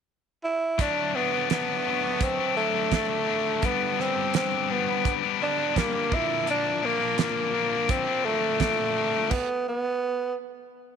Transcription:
0.44 E4
0.78 D3 F#3 A3 D4, kick, closed hi-hat
1.15 D3 F#3 A3 B3 D4
1.33 F#3 A3 D4
1.50 D3 F#3 A3 B3 D4, snare, closed hi-hat
1.86 D3 F#3 A3 D4
2.03 F#3 A3 D4
2.21 C4, kick, closed hi-hat
2.38 F#3 A3 D4
2.56 D3 F#3 A3 D4
2.74 F#3 A3 D4
2.91 D3 F#3 A3 D4, kick, snare, closed hi-hat
3.09 F#3 A3 D4
3.26 D3 F#3 A3 D4
3.61 G2 D3 G3 B3 D4, kick, closed hi-hat
3.66 B3
3.98 D3 G3 B3 C4 D4, snare
4.16 G3 B3 D4
4.34 G2 D3 G3 B3 C4 D4, snare, closed hi-hat
4.69 D3 G3 B3 D4
4.87 G3 B3 D4
5.05 kick, closed hi-hat
5.22 G3 B3 D4
5.41 D3 G3 B3 D4
5.58 G3 B3 D4
5.75 G2 D3 G3 A#3 B3 D4, kick, snare, closed hi-hat
5.92 G3 B3 D4
6.10 A#2 D3 F3 A#3 D4, kick
6.14 E4
6.45 A#2 D3 F3 A#3 D4, closed hi-hat
6.51 D4
6.81 D3 F3 A#3 D4
6.86 A#3
6.99 F3 A#3 D4
7.17 A#2 D3 F3 A#3 D4, snare, closed hi-hat
7.52 D3 F3 A#3 D4
7.69 F3 A#3 D4
7.89 C4, kick, closed hi-hat
8.05 F3 A#3 D4
8.24 D3 F3 A3 A#3 D4
8.41 F3 A#3 D4
8.59 A#2 D3 F3 A#3 D4, kick, snare, closed hi-hat
8.78 F3 A#3 D4
8.95 D3 F3 A#3 D4
9.31 B3, kick, crash
9.68 B3

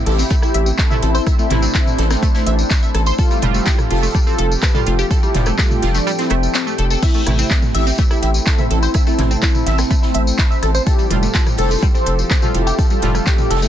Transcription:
Already playing: C3 A3 C4 E4 A4 C5 G5 A5
0.06 A1 E4 G4 A4, closed hi-hat, open hi-hat
0.19 C4, tambourine
0.30 A3, kick, closed hi-hat, tambourine
0.42 E4 G4, cross-stick, tambourine
0.54 A1 E5, closed hi-hat
0.66 tambourine
0.78 C4 E4 A4, kick, snare, clap, closed hi-hat, tambourine
0.91 C3 A3 E4 E5, mid tom, tambourine
1.02 A1 C4 E4 A4, closed hi-hat
1.15 C5, tambourine
1.27 D4 E5, kick, cross-stick, closed hi-hat, tambourine
1.38 A3 C4 E4, tambourine
1.50 A1 C3 A3 E4, snare, closed hi-hat, mid tom
1.62 C4, tambourine
1.75 C4 E4, kick, snare, clap, closed hi-hat, tambourine
1.86 mid tom, tambourine
1.98 A1 A4, snare, closed hi-hat
2.10 A3 C4, cross-stick, snare, tambourine
2.23 A3, kick, closed hi-hat, tambourine
2.35 A3 C4 E4, snare, tambourine
2.47 A1 E5, closed hi-hat
2.59 tambourine
2.70 E4, kick, snare, clap, closed hi-hat, tambourine
2.83 E5, tambourine
2.95 A1 A4, cross-stick, closed hi-hat
3.06 C5, tambourine
3.18 F3 A3 C4 F4 G4 A4, kick, closed hi-hat, tambourine
3.25 A4
3.30 G3 G5, closed hi-hat, tambourine
3.42 F1 A2 G3 F4, closed hi-hat, mid tom
3.54 A3 E4 G4, tambourine
3.66 C4, kick, snare, clap, closed hi-hat, tambourine
3.79 cross-stick, mid tom, tambourine
3.90 F1 F4 A4, closed hi-hat, open hi-hat
4.03 A3, tambourine
4.15 G3, kick, closed hi-hat, tambourine
4.27 C4 F4 A4, tambourine
4.38 F1 A4, closed hi-hat
4.51 tambourine
4.62 C4 G4 B4, kick, cross-stick, snare, clap, closed hi-hat, tambourine
4.75 A2 G3 F4 A4, mid tom, tambourine
4.86 F1 A3 F4, closed hi-hat
4.99 G4, tambourine
5.11 A4, kick, closed hi-hat, tambourine
5.23 G3 E4 G4, tambourine
5.35 F1 A2 F3 G3, snare, closed hi-hat, mid tom
5.46 A3, cross-stick, tambourine
5.58 A3 C4 F4, kick, snare, clap, closed hi-hat, tambourine
5.71 mid tom, tambourine
5.83 F1 F4, snare, closed hi-hat
5.94 F3 A3 D4, snare, tambourine
6.07 G3, closed hi-hat, tambourine
6.19 C4 E4, snare, closed hi-hat, tambourine
6.30 F1 A3, cross-stick, closed hi-hat
6.43 tambourine
6.54 C4, snare, clap, closed hi-hat, tambourine
6.67 A3, tambourine
6.78 F1 A4, closed hi-hat
6.90 A4, tambourine
7.02 A3 C4 E4 E5, kick, closed hi-hat, crash, tambourine
7.12 A3 A5, closed hi-hat, tambourine
7.27 A1 C3 A3 E4, cross-stick, closed hi-hat, mid tom
7.39 C4 E4, tambourine
7.45 C5
7.50 E4, kick, snare, clap, closed hi-hat
7.62 mid tom, tambourine
7.75 A1 E4 G4 E5, closed hi-hat, open hi-hat
7.87 C4, tambourine
7.98 A3, kick, closed hi-hat, tambourine
8.10 E4 G4, cross-stick, tambourine
8.23 A1 E5, closed hi-hat
8.34 tambourine
8.46 C4 E4 A4, kick, snare, clap, closed hi-hat, tambourine
8.58 C3 A3 E4 E5, mid tom, tambourine
8.71 A1 C4 E4 A4, closed hi-hat
8.83 C5, tambourine
8.94 E5, kick, cross-stick, closed hi-hat, tambourine
9.06 A3 C4 E4, tambourine
9.19 A1 C3 A3 E4, snare, closed hi-hat, mid tom
9.31 C4, tambourine
9.42 C4 E4, kick, snare, clap, closed hi-hat, tambourine
9.55 mid tom, tambourine
9.66 A1 E5, snare, closed hi-hat
9.78 A3 C4, cross-stick, snare, tambourine
9.90 A3, kick, closed hi-hat, tambourine
10.03 A3 C4 E4, snare, tambourine
10.14 A1 E5, closed hi-hat
10.27 tambourine
10.39 E4, kick, snare, clap, closed hi-hat, tambourine
10.51 E5, tambourine
10.63 A1 A4, cross-stick, closed hi-hat
10.75 C5, tambourine
10.86 F3 E4 F4 G4 A4, kick, closed hi-hat, tambourine
10.98 G3 A4, closed hi-hat, tambourine
11.10 F1 A2 G3 F4, closed hi-hat, mid tom
11.23 A3 F4 A4, tambourine
11.34 C4, kick, snare, clap, closed hi-hat, tambourine
11.47 cross-stick, mid tom, tambourine
11.58 F1 A4 C5, closed hi-hat, open hi-hat
11.71 A3 G5, tambourine
11.83 G3, kick, closed hi-hat, tambourine
11.95 C4 A4 C5, tambourine
12.06 F1 A4, closed hi-hat
12.19 tambourine
12.31 C4 A4 C5, kick, cross-stick, snare, clap, closed hi-hat, tambourine
12.42 A2 G3 F4 A4, mid tom, tambourine
12.54 F1 E4 F4 G4, closed hi-hat
12.67 G4, tambourine
12.79 A4, kick, closed hi-hat, tambourine
12.90 G3 F4 A4, tambourine
13.02 F1 A2 G3 F4, snare, closed hi-hat, mid tom
13.15 A3, cross-stick, tambourine
13.27 C4 E4 G4, kick, snare, clap, closed hi-hat, tambourine
13.38 mid tom, tambourine
13.50 F1 A4, snare, closed hi-hat
13.57 snare, closed hi-hat
13.62 A3 C4 E4, snare, closed hi-hat, tambourine

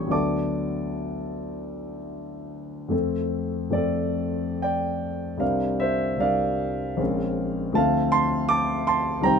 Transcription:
Already playing: A1 G3 B3 D4 A4 C#5 G5 C#6
0.07 D2 F#3 B3 D4 A4
0.11 D5 A5 D6
2.89 F2 A3 C4 A4
3.70 F2 A3 C4 A4 D5
4.62 D5 G5
5.37 C2 G3 C4 D4 A#4 F5
5.41 D5
5.80 C5 E5
6.17 C2 G3 C4 D4 A#4 F5
6.21 D5
6.97 A#1 G#3 C4 C#4 A#4
7.72 D2 F3 A3 C4 A4 A5
7.77 F5
8.12 A5 C6
8.49 A5 D6
8.87 A5 C6
9.21 C2 D#3 G3 C4 C5 A#5
9.25 G5

